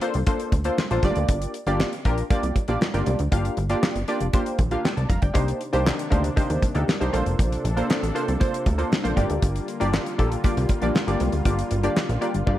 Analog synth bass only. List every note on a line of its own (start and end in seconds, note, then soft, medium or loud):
0.15 0.24 C2 loud
0.52 0.70 D2 medium
0.91 1.00 A#1 medium
1.03 1.12 G1 loud
1.16 1.25 D2 medium
1.29 1.47 G1 loud
1.67 1.85 G1 loud
2.05 2.23 A#1 loud
2.43 2.52 C2 medium
2.69 2.78 A#1 medium
2.94 3.03 G1 loud
3.07 3.16 C2 loud
3.20 3.28 D2 loud
3.32 3.50 G1 loud
3.57 3.75 G1 loud
3.95 4.04 G1 medium
4.21 4.30 F1 medium
4.59 4.77 A#1 loud
4.97 5.06 C2 loud
5.10 5.19 F1 medium
5.23 5.32 G1 medium
5.35 5.53 C2 loud
5.74 5.92 C2 loud
6.12 6.30 D2 loud
6.50 6.59 D#2 medium
6.75 6.84 D2 loud
7.01 7.10 C2 loud
7.14 7.23 A#1 loud
7.26 7.35 F1 medium
7.39 7.57 A#1 loud
7.64 7.82 A#1 loud
8.03 8.12 A1 loud
8.28 8.37 C2 loud
8.66 8.84 D2 loud
9.05 9.14 A#1 medium
9.17 9.26 G1 loud
9.30 9.39 D2 medium
9.43 9.60 G1 loud
9.81 9.99 G1 medium
10.19 10.37 A#1 loud
10.57 10.66 C2 loud
10.82 10.91 A#1 medium
11.07 11.16 G1 loud
11.20 11.29 C2 loud
11.33 11.42 D2 medium
11.46 11.64 G1 loud
11.71 11.89 G1 loud
12.09 12.18 A#1 loud
12.34 12.43 G1 medium
12.47 12.56 G2 loud